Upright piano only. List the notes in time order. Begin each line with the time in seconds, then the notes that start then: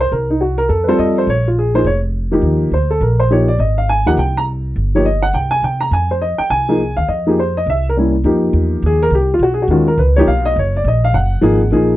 0.01 C5
0.12 A#4
0.30 D#4
0.41 F#4
0.58 A#4
0.69 A4
0.84 B4
0.88 G3 C4 F4 A4 C5
0.99 D#5
1.18 C5
1.30 C#5
1.48 F4
1.59 G#4
1.74 F3 A#3 D#4 G#4 C5
1.87 C#5
2.31 F3 A#3 D#4 G4
2.74 C5
2.90 A4
3.02 A#4
3.20 C5
3.30 F3 A#3 D#4 G4 C#5
3.48 D5
3.60 D#5
3.78 F5
3.89 G#5
4.06 F3 A#3 D#4 G4 F#5
4.19 G5
4.37 A#5
4.95 F3 A#3 D#4 G4 C#5
5.05 D#5
5.22 F#5
5.34 G5
5.51 G#5
5.64 G5
5.81 A#5
5.93 G#5
6.11 C5
6.22 D#5
6.38 G5
6.50 G#5
6.69 F3 A#3 D#4 G#4
6.97 F5
7.08 D#5
7.27 F3 A#3 D#4 G4 G#4
7.39 C5
7.57 D#5
7.70 E5
7.89 A#4
7.97 G3 A#3 C#4 E4
8.25 F3 A#3 D#4 G4
8.86 G#4
9.03 A#4
9.15 G4
9.34 F4
9.43 F#4
9.54 G#4
9.62 F#4
9.70 D#3 G#3 C#4 F4 F#4
9.88 A#4
9.99 B4
10.16 F3 A#3 D#4 G4 C#5
10.28 F5
10.45 D#5
10.59 C#5
10.76 D5
10.88 D#5
11.04 F5
11.14 F#5
11.41 F3 A#3 D#4 G#4
11.72 F3 A#3 D#4 G#4